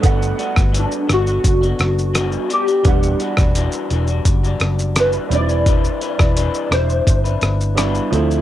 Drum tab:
HH |x-x-x-x-x-x-x-x-|x-x-x-x-x-x-x-x-|x-x-x-x-x-x-x-x-|
SH |xxxxxxxxxxxxxxxx|xxxxxxxxxxxxxxxx|xxxxxxxxxxxxxxxx|
SD |---r--r---r-r---|---r------r-r---|---r--r---r-r---|
BD |o--o----o-------|o--o----o-------|o--o----o-------|